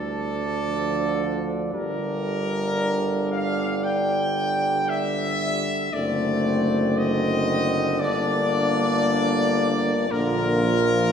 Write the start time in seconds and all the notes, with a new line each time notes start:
Already playing: D2 E3 G3 D4 A4
0.66 D3 F3
1.73 G1 D3 G3 D4 A#4
3.31 F5
3.83 G5
4.88 E5
5.93 F#1 D3 A3 C4 D5
6.97 D#5
8.00 G1 A#3 D4 D5
10.10 A#1 D3 A#3 F4 A#4
10.65 F3